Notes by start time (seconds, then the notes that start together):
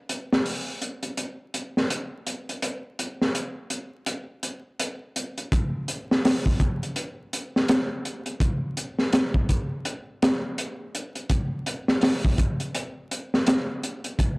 0.09 closed hi-hat
0.33 snare
0.46 open hi-hat
0.82 closed hi-hat
1.03 closed hi-hat
1.17 closed hi-hat
1.54 closed hi-hat
1.77 snare
1.90 closed hi-hat
2.27 closed hi-hat
2.49 closed hi-hat
2.62 closed hi-hat
2.99 closed hi-hat
3.22 snare
3.35 closed hi-hat
3.70 closed hi-hat
4.06 closed hi-hat
4.43 closed hi-hat
4.79 closed hi-hat
5.16 closed hi-hat
5.38 closed hi-hat
5.52 kick, closed hi-hat
5.88 closed hi-hat
6.11 snare
6.25 snare, open hi-hat
6.46 kick
6.60 kick, closed hi-hat
6.83 closed hi-hat
6.96 closed hi-hat
7.33 closed hi-hat
7.56 snare
7.68 snare, closed hi-hat
8.05 closed hi-hat
8.26 closed hi-hat
8.40 kick, closed hi-hat
8.77 closed hi-hat
8.99 snare
9.13 snare, closed hi-hat
9.34 kick
9.49 kick, closed hi-hat
9.85 closed hi-hat
10.22 snare, closed hi-hat
10.58 closed hi-hat
10.95 closed hi-hat
11.15 closed hi-hat
11.30 kick, closed hi-hat
11.66 closed hi-hat
11.88 snare
12.01 snare, open hi-hat
12.25 kick
12.38 kick, closed hi-hat
12.60 closed hi-hat
12.75 closed hi-hat
13.11 closed hi-hat
13.34 snare
13.46 snare, closed hi-hat
13.83 closed hi-hat
14.04 closed hi-hat
14.19 kick, closed hi-hat